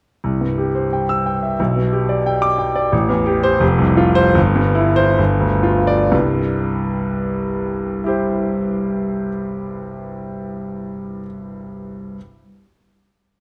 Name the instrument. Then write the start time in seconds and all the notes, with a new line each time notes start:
grand piano
0.24 C2
0.41 G2
0.58 G4
0.75 C5
0.93 G5
1.09 E6
1.26 G5
1.43 E5
1.60 B1
1.76 B2
1.93 G4
2.09 D5
2.26 G5
2.42 D6
2.58 G5
2.76 D5
2.92 A1
3.09 E2
3.26 G4
3.43 C5
3.60 F1
3.78 C2
3.97 F4
4.15 C5
4.35 G1
4.56 G2
4.75 E4
4.96 C5
5.18 G1
5.40 D2
5.63 F4
5.87 D5
6.12 C2 G2
8.04 E4 G4
8.08 C5